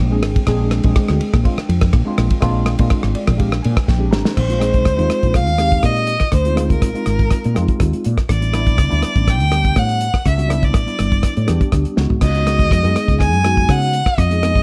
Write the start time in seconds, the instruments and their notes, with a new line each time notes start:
Already playing: analog synth pad G#3 D4 C5 G5
0.00 fretless electric bass A#1
0.10 tine electric piano G#3 C4 D4 G#4
0.23 fretless electric bass G#1, cross-stick, ride
0.36 muted fretless electric bass stroke, kick, ride
0.47 fretless electric bass A#1, tine electric piano G#3 C4 D4 G#4, kick, cross-stick, ride
0.71 cross-stick, ride
0.84 fretless electric bass A#1, tine electric piano G#3 C4 D4 G#4, kick, ride
0.96 kick, cross-stick, ride
1.08 fretless electric bass D2, cross-stick
1.21 ride
1.34 fretless electric bass A#1, kick, cross-stick, ride
1.43 tine electric piano G#3 C4 D4 F4, kick, ride
1.57 tine electric piano D4, muted fretless electric bass stroke, cross-stick
1.69 fretless electric bass F2, ride
1.81 kick, cross-stick, ride
1.93 fretless electric bass A#1, kick, cross-stick, ride
2.05 tine electric piano G#3 C4 D4 F4
2.18 fretless electric bass A#1, cross-stick, ride
2.30 kick, ride
2.40 fretless electric bass A#1, tine electric piano G#3 C4 D4 F4, kick, cross-stick, ride
2.66 cross-stick, ride
2.78 fretless electric bass A#2, tine electric piano G#3 C4 D4 F4, kick, ride
2.90 kick, cross-stick, ride
3.03 fretless electric bass G#1, cross-stick
3.15 tine electric piano D5, ride
3.27 fretless electric bass A#1, kick, cross-stick, ride
3.37 tine electric piano G#3 C4 D4 G4 F5, kick, ride
3.52 tine electric piano D4 A#4, cross-stick
3.62 fretless electric bass A#2, tine electric piano G#5, ride
3.77 kick, cross-stick, ride
3.87 fretless electric bass A#1, tine electric piano G5, kick, snare
3.98 tine electric piano G#3 C4 D4 G4
4.11 fretless electric bass G#1, tine electric piano A#5, snare
4.25 muted fretless electric bass stroke, snare
4.36 fretless electric bass A#1, violin C5, kick, cross-stick, crash
4.47 tine electric piano G#3 C4 D#4 F4, closed hi-hat
4.59 tine electric piano G#3 C4 D#4 G#4, cross-stick, closed hi-hat
4.74 kick, closed hi-hat
4.85 fretless electric bass D2, kick, cross-stick, closed hi-hat
4.96 fretless electric bass D#2, tine electric piano G#3 C4 D#4 F4, closed hi-hat
5.10 muted fretless electric bass stroke, cross-stick, closed hi-hat
5.23 fretless electric bass A#1, kick, closed hi-hat
5.34 violin F5, kick, cross-stick, closed hi-hat
5.47 fretless electric bass D#2, closed hi-hat
5.58 tine electric piano G#3 C4 D#4 G4, cross-stick, closed hi-hat
5.71 kick, closed hi-hat
5.83 fretless electric bass A#2, violin D#5, kick, cross-stick, closed hi-hat
5.96 closed hi-hat
6.07 closed hi-hat
6.20 tine electric piano D#4 F4, muted fretless electric bass stroke, kick, cross-stick, closed hi-hat
6.32 fretless electric bass D2, violin C5, kick, cross-stick, closed hi-hat
6.44 tine electric piano G#3 C4 D#4 F4, closed hi-hat
6.55 tine electric piano G#3 C4 D#4 F4, cross-stick, closed hi-hat
6.70 violin A#4, kick, closed hi-hat
6.82 fretless electric bass A#1, kick, cross-stick, closed hi-hat
6.94 tine electric piano G#3 C4 D#4 F4, closed hi-hat
7.06 fretless electric bass G#1, cross-stick, closed hi-hat
7.19 kick, closed hi-hat
7.31 kick, cross-stick, closed hi-hat
7.44 fretless electric bass A#2, closed hi-hat
7.55 fretless electric bass F2, tine electric piano G#3 C4 D#4 F4, cross-stick, closed hi-hat
7.68 muted fretless electric bass stroke, kick, closed hi-hat
7.80 fretless electric bass D#2, kick, cross-stick, closed hi-hat
7.93 muted fretless electric bass stroke, closed hi-hat
8.04 fretless electric bass A#2, closed hi-hat
8.18 tine electric piano F4, kick, cross-stick, closed hi-hat
8.29 fretless electric bass A1, violin D5, kick, cross-stick, closed hi-hat
8.40 tine electric piano G3 B3 D4 E4, closed hi-hat
8.53 tine electric piano G3 B3 D4 E4, cross-stick, closed hi-hat
8.67 kick, closed hi-hat
8.78 fretless electric bass C#2, kick, cross-stick, closed hi-hat
8.88 fretless electric bass D2, tine electric piano G3 B3 D4 E4, closed hi-hat
9.03 cross-stick, closed hi-hat
9.15 fretless electric bass A1, kick, closed hi-hat
9.28 violin G5, kick, cross-stick, closed hi-hat
9.40 fretless electric bass D2, closed hi-hat
9.51 tine electric piano G3 B3 D4 G4, cross-stick, closed hi-hat
9.65 kick, closed hi-hat
9.76 fretless electric bass A2, violin F#5, kick, cross-stick, closed hi-hat
9.89 closed hi-hat
10.01 closed hi-hat
10.14 tine electric piano G4, muted fretless electric bass stroke, kick, cross-stick, closed hi-hat
10.26 fretless electric bass C#2, violin E5, kick, cross-stick, closed hi-hat
10.36 tine electric piano G3 B3 D4 F#4, closed hi-hat
10.48 tine electric piano G3 B3 D4 E4, cross-stick, closed hi-hat
10.63 violin D5, kick, closed hi-hat
10.74 fretless electric bass A1, kick, cross-stick, closed hi-hat
10.86 tine electric piano G3 B3 D4 E4, closed hi-hat
10.99 fretless electric bass G1, cross-stick, closed hi-hat
11.12 kick, closed hi-hat
11.23 kick, cross-stick, closed hi-hat
11.37 fretless electric bass A2, closed hi-hat
11.46 fretless electric bass E2, tine electric piano G3 B3 D4 G4, cross-stick, closed hi-hat
11.61 kick, closed hi-hat
11.72 fretless electric bass D2, kick, cross-stick, closed hi-hat
11.85 muted fretless electric bass stroke, closed hi-hat
11.96 fretless electric bass C#2, tine electric piano G#3 B3 D#4 F#4, snare
12.10 muted fretless electric bass stroke, floor tom
12.21 fretless electric bass C#2, violin D#5, kick, cross-stick, closed hi-hat, crash
12.34 tine electric piano G#3 B3 D#4 F#4, closed hi-hat
12.46 tine electric piano G#3 B3 D#4 F#4, cross-stick, closed hi-hat
12.59 kick, closed hi-hat
12.71 fretless electric bass F2, kick, cross-stick, closed hi-hat
12.83 fretless electric bass F#2, tine electric piano G#3 B3 D#4 G#4, closed hi-hat
12.96 muted fretless electric bass stroke, cross-stick, closed hi-hat
13.08 fretless electric bass C#2, kick, closed hi-hat
13.20 violin G#5, kick, cross-stick, closed hi-hat
13.33 fretless electric bass F#2, closed hi-hat
13.43 tine electric piano G#3 B3 D#4 F#4, cross-stick, closed hi-hat
13.57 kick, closed hi-hat
13.69 fretless electric bass C#3, violin F#5, kick, cross-stick, closed hi-hat
13.82 closed hi-hat
13.93 closed hi-hat
14.06 tine electric piano D#4 F#4, muted fretless electric bass stroke, kick, cross-stick, closed hi-hat
14.18 fretless electric bass F2, violin D#5, kick, cross-stick, closed hi-hat
14.30 tine electric piano G#3 B3 D#4 G#4, closed hi-hat
14.42 tine electric piano G#3 B3 D#4 G#4, cross-stick, closed hi-hat
14.55 kick, closed hi-hat